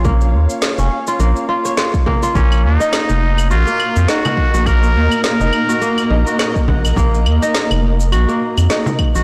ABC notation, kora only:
X:1
M:4/4
L:1/16
Q:"Swing 16ths" 1/4=104
K:Ebdor
V:1 name="Kora"
B, z4 D2 F B, z F d F z B, F | B,3 E z4 G B,3 E z2 G | B, z4 E2 G B, z E G z2 g z | B,3 E z4 G B,3 E z2 G |]